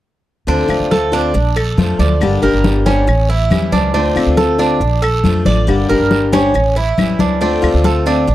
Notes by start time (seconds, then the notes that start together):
0.47 D2 D3 A3 C4 D4 F4, high conga, long guiro
0.68 D2 A3 C4 F4, high conga, claves
0.80 D2
0.91 A4, high conga, short guiro
1.12 A3 C4 D4 F4, high conga, short guiro
1.34 A#1, muted steel-string acoustic guitar stroke, high conga, long guiro
1.56 A4, high conga, claves
1.77 F2 F3 A3 D4 F4, high conga, short guiro
1.99 D2 D5, high conga, short guiro
2.20 G1 D3 G3 A#3 D4 G4, high conga, long guiro, claves
2.42 G1 G3 A#3 D4 G4 A#4, high conga
2.53 G1
2.64 high conga, short guiro
2.86 G3 A#3 C#4 D4 G4, high conga, short guiro
3.07 A1, muted steel-string acoustic guitar stroke, high conga, long guiro, claves
3.29 E4, high conga
3.50 E2 E3 G3 C#4 E4, high conga, short guiro, claves
3.72 C#2 D4, high conga, short guiro
3.94 D2 D3 A3 C4 D4 F4, high conga, long guiro
4.15 D2 A3 C4 F4, high conga, claves
4.27 D2
4.37 A4, high conga, short guiro
4.58 A3 C4 D4 F4, high conga, short guiro
4.80 A#1, muted steel-string acoustic guitar stroke, high conga, long guiro
5.02 A4, high conga, claves
5.24 F2 F3 A3 D4 F4, high conga, short guiro
5.45 A1 D5, high conga, short guiro
5.67 G1 D3 G3 A#3 D4 G4, long guiro, claves
5.89 G1 G3 A#3 D4 G4 A#4, high conga
6.00 G1
6.11 high conga, short guiro
6.32 G3 A#3 C#4 D4 G4, high conga, short guiro
6.54 A1, muted steel-string acoustic guitar stroke, high conga, long guiro, claves
6.76 E4, high conga
6.97 A1 E3 G3 C#4 E4, high conga, short guiro, claves
7.19 C#2 D4, high conga, short guiro
7.41 D2 D3 A3 C4 D4 F4, long guiro
7.62 D2 A3 C4 F4, high conga, claves
7.74 D2
7.84 A4, high conga, short guiro
8.06 A3 C4 D4 F4, high conga, short guiro
8.27 A#1, muted steel-string acoustic guitar stroke, high conga, long guiro